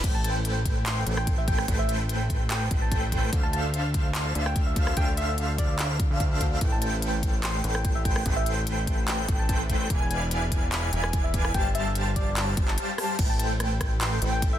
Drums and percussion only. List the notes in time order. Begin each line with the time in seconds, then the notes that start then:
0.04 kick, closed hi-hat, crash
0.24 closed hi-hat
0.45 closed hi-hat
0.65 kick, closed hi-hat
0.86 clap, closed hi-hat
1.07 closed hi-hat
1.17 cross-stick
1.27 kick, closed hi-hat
1.48 kick, closed hi-hat
1.58 cross-stick
1.68 kick, closed hi-hat
1.89 closed hi-hat
2.09 closed hi-hat
2.30 kick, closed hi-hat
2.50 clap, closed hi-hat
2.71 kick, closed hi-hat
2.92 kick, closed hi-hat
3.12 kick, closed hi-hat
3.33 kick, closed hi-hat
3.53 closed hi-hat
3.74 closed hi-hat
3.94 kick, closed hi-hat
4.15 clap, closed hi-hat
4.35 closed hi-hat
4.46 cross-stick
4.56 kick, closed hi-hat
4.76 kick, closed hi-hat
4.87 cross-stick
4.97 kick, closed hi-hat
5.17 closed hi-hat
5.38 closed hi-hat
5.58 kick, closed hi-hat
5.79 clap, closed hi-hat
6.00 kick, closed hi-hat
6.20 kick, closed hi-hat
6.41 kick, closed hi-hat
6.61 kick, closed hi-hat
6.82 closed hi-hat
7.02 closed hi-hat
7.23 kick, closed hi-hat
7.43 clap, closed hi-hat
7.64 closed hi-hat
7.75 cross-stick
7.85 kick, closed hi-hat
8.05 kick, closed hi-hat
8.16 cross-stick
8.26 kick, closed hi-hat
8.46 closed hi-hat
8.67 closed hi-hat
8.87 kick, closed hi-hat
9.08 clap, closed hi-hat
9.29 kick, closed hi-hat
9.49 kick, closed hi-hat
9.70 kick, closed hi-hat
9.90 kick, closed hi-hat
10.11 closed hi-hat
10.31 closed hi-hat
10.52 kick, closed hi-hat
10.72 clap, closed hi-hat
10.93 closed hi-hat
11.04 cross-stick
11.13 kick, closed hi-hat
11.34 kick, closed hi-hat
11.45 cross-stick
11.54 kick, closed hi-hat
11.75 closed hi-hat
11.95 closed hi-hat
12.16 kick, closed hi-hat
12.37 clap, closed hi-hat
12.57 kick, closed hi-hat
12.68 clap
12.78 closed hi-hat
12.98 cross-stick, open hi-hat
13.19 kick, closed hi-hat, crash
13.39 closed hi-hat
13.60 cross-stick, closed hi-hat
13.81 kick, cross-stick, closed hi-hat
14.01 clap, closed hi-hat
14.22 closed hi-hat
14.42 kick, closed hi-hat